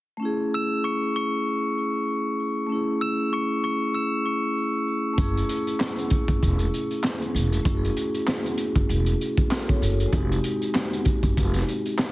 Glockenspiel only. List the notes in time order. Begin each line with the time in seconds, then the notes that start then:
0.54 E6 E7
0.84 C#6 C#7
1.16 C#6 C#7
3.01 E6 E7
3.33 C#6 C#7
3.64 C#6 C#7
3.95 E6 E7
4.26 C#6 C#7